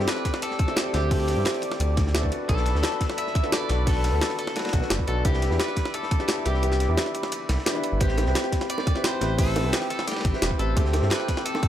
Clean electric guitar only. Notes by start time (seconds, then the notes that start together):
0.08 B4
0.43 A4
0.94 G4
2.49 A4
3.18 E5
3.53 D5
3.87 A4
4.39 A4
4.56 F#4
5.08 A4
5.25 G4
5.60 B4
5.94 A4
6.46 G4
8.01 G4
8.70 D5
9.04 C5
9.39 A4
9.90 A4
10.08 G4
10.59 A4
10.77 G4
11.11 B4
11.45 A4